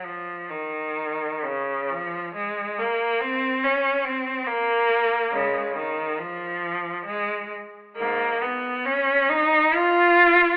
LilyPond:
\new Staff \with { instrumentName = "Cello" } { \clef bass \time 3/4 \key f \phrygian \tempo 4 = 69 f8 ees4 des8 f8 aes8 | bes8 c'8 des'8 c'8 bes4 | <des aes>8 ees8 f4 aes8 r8 | <aes, bes>8 ces'8 des'8 ees'8 f'4 | }